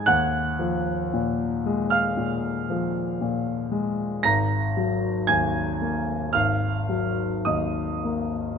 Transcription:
<<
  \new Staff \with { instrumentName = "Grand piano" } { \time 4/4 \key aes \mixolydian \tempo 4 = 57 <ges'' ges'''>4.~ <ges'' ges'''>16 <f'' f'''>4.~ <f'' f'''>16 r8 | <bes'' bes'''>4 <aes'' aes'''>4 <f'' f'''>4 <ees'' ees'''>4 | }
  \new Staff \with { instrumentName = "Grand piano" } { \clef bass \time 4/4 \key aes \mixolydian ees,8 f8 bes,8 aes8 bes,8 f8 bes,8 aes8 | aes,,8 ges8 ees,8 bes8 aes,,8 ges8 ees,8 bes8 | }
>>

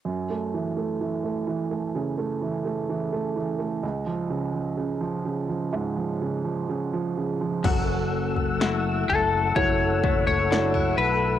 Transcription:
<<
  \new Staff \with { instrumentName = "Tonewheel organ" } { \time 4/4 \key fis \minor \tempo 4 = 63 r1 | r1 | <a' fis'' e'''>1 | }
  \new Staff \with { instrumentName = "Lead electric guitar" } { \time 4/4 \key fis \minor r1 | r1 | r4. a'8 cis''8. cis''8. b'8 | }
  \new Staff \with { instrumentName = "Clean electric guitar" } { \time 4/4 \key fis \minor r1 | r1 | <fis, fis'>4 <a e' fis'>4. a8 d'16 e'8. | }
  \new Staff \with { instrumentName = "Upright piano" } { \clef bass \time 4/4 \key fis \minor fis,16 a16 e16 a16 e16 a16 e16 a16 cis16 a16 e16 a16 e16 a16 e16 a16 | cis,16 eis16 cis16 eis16 cis16 eis16 cis16 eis16 gis,16 eis16 cis16 eis16 cis16 eis16 cis16 eis16 | fis2 <e' fis' a'>4 <e' fis' a'>4 | }
  \new Staff \with { instrumentName = "Fretless electric bass" } { \clef bass \time 4/4 \key fis \minor r1 | r1 | fis,,4. fis,,8 fis,,4. b,,8 | }
  \new DrumStaff \with { instrumentName = "Drums" } \drummode { \time 4/4 r4 r4 r4 r4 | r4 r4 r4 r4 | <cymc bd tomfh>8. tomfh16 sn8 tomfh8 <bd tomfh>8 bd16 tomfh16 sn16 tomfh8. | }
>>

